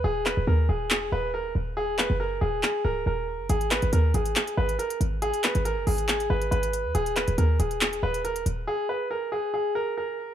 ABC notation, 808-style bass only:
X:1
M:4/4
L:1/16
Q:1/4=139
K:D#phr
V:1 name="808-style bass" clef=bass
D,,,3 D,,, D,,2 D,,,3 E,,, D,,,4 D,,,2- | D,,,3 F,,,3 D,,,2 z2 C,,,2 D,,,3 F,,, | G,,,3 G,,, D,,2 G,,,2 z2 G,,,2 z2 G,,,2- | G,,, z2 G,,,2 F,,, G,,,4 G,,,2 G,,,3 D,, |
D,,,3 D,,, D,,2 D,,,3 E,,, D,,,4 D,,,2 | z16 |]